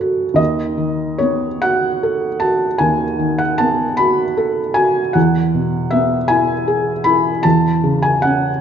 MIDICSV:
0, 0, Header, 1, 2, 480
1, 0, Start_track
1, 0, Key_signature, 4, "major"
1, 0, Tempo, 738916
1, 254, Time_signature, 12, 3, 24, 8
1, 254, Tempo, 824176
1, 1214, Tempo, 773196
1, 4574, Tempo, 793651
1, 5274, End_track
2, 0, Start_track
2, 0, Title_t, "Felt piano"
2, 0, Program_c, 0, 0
2, 0, Control_c, 0, 64, 127
2, 0, Note_on_c, 0, 42, 45
2, 0, Note_on_c, 0, 49, 40
2, 0, Note_on_c, 0, 61, 47
2, 0, Note_on_c, 0, 66, 48
2, 0, Note_on_c, 0, 69, 49
2, 0, Note_on_c, 0, 73, 72
2, 4, Note_off_c, 0, 66, 0
2, 4, Note_on_c, 0, 66, 48
2, 154, Note_off_c, 0, 69, 0
2, 221, Note_on_c, 0, 39, 56
2, 228, Note_off_c, 0, 42, 0
2, 232, Note_on_c, 0, 75, 77
2, 244, Note_off_c, 0, 73, 0
2, 249, Note_off_c, 0, 66, 0
2, 263, Control_c, 0, 64, 0
2, 266, Note_off_c, 0, 49, 0
2, 268, Note_off_c, 0, 61, 0
2, 361, Control_c, 0, 64, 127
2, 478, Note_on_c, 0, 51, 41
2, 716, Note_on_c, 0, 73, 72
2, 718, Note_off_c, 0, 75, 0
2, 726, Note_on_c, 0, 59, 45
2, 879, Note_off_c, 0, 51, 0
2, 968, Note_on_c, 0, 78, 81
2, 973, Note_off_c, 0, 73, 0
2, 975, Note_on_c, 0, 66, 47
2, 1121, Note_off_c, 0, 59, 0
2, 1209, Note_on_c, 0, 69, 47
2, 1356, Note_off_c, 0, 66, 0
2, 1436, Note_on_c, 0, 81, 79
2, 1447, Note_off_c, 0, 78, 0
2, 1447, Note_on_c, 0, 66, 44
2, 1594, Note_off_c, 0, 69, 0
2, 1651, Note_off_c, 0, 39, 0
2, 1676, Note_on_c, 0, 80, 80
2, 1683, Note_off_c, 0, 81, 0
2, 1687, Note_on_c, 0, 39, 49
2, 1834, Note_off_c, 0, 66, 0
2, 1929, Note_on_c, 0, 51, 44
2, 2049, Note_on_c, 0, 78, 72
2, 2051, Note_off_c, 0, 80, 0
2, 2170, Note_on_c, 0, 81, 78
2, 2178, Note_off_c, 0, 78, 0
2, 2180, Note_on_c, 0, 59, 47
2, 2326, Note_off_c, 0, 51, 0
2, 2412, Note_on_c, 0, 83, 81
2, 2419, Note_off_c, 0, 81, 0
2, 2425, Note_on_c, 0, 66, 51
2, 2567, Note_off_c, 0, 59, 0
2, 2663, Note_on_c, 0, 69, 50
2, 2805, Note_off_c, 0, 66, 0
2, 2892, Note_on_c, 0, 80, 83
2, 2895, Note_off_c, 0, 83, 0
2, 2901, Note_on_c, 0, 66, 50
2, 3049, Note_off_c, 0, 69, 0
2, 3120, Note_off_c, 0, 39, 0
2, 3134, Note_on_c, 0, 78, 64
2, 3142, Note_off_c, 0, 80, 0
2, 3147, Note_off_c, 0, 66, 0
2, 3147, Note_on_c, 0, 40, 57
2, 3158, Control_c, 0, 64, 0
2, 3254, Control_c, 0, 64, 127
2, 3389, Note_on_c, 0, 47, 39
2, 3614, Note_on_c, 0, 76, 76
2, 3619, Note_off_c, 0, 78, 0
2, 3624, Note_on_c, 0, 59, 48
2, 3766, Note_off_c, 0, 47, 0
2, 3846, Note_on_c, 0, 80, 84
2, 3854, Note_off_c, 0, 76, 0
2, 3858, Note_on_c, 0, 64, 49
2, 4000, Note_off_c, 0, 59, 0
2, 4092, Note_on_c, 0, 68, 52
2, 4238, Note_off_c, 0, 64, 0
2, 4319, Note_on_c, 0, 83, 80
2, 4327, Note_off_c, 0, 80, 0
2, 4330, Note_on_c, 0, 64, 46
2, 4475, Note_off_c, 0, 68, 0
2, 4547, Note_off_c, 0, 40, 0
2, 4560, Note_on_c, 0, 81, 83
2, 4564, Note_off_c, 0, 83, 0
2, 4570, Note_off_c, 0, 64, 0
2, 4572, Note_on_c, 0, 40, 56
2, 4582, Control_c, 0, 64, 0
2, 4691, Control_c, 0, 64, 127
2, 4806, Note_on_c, 0, 49, 46
2, 4920, Note_off_c, 0, 81, 0
2, 4921, Note_on_c, 0, 80, 79
2, 5039, Note_on_c, 0, 78, 82
2, 5045, Note_off_c, 0, 80, 0
2, 5053, Note_on_c, 0, 61, 47
2, 5195, Note_off_c, 0, 49, 0
2, 5274, Note_off_c, 0, 40, 0
2, 5274, Note_off_c, 0, 61, 0
2, 5274, Note_off_c, 0, 78, 0
2, 5274, End_track
0, 0, End_of_file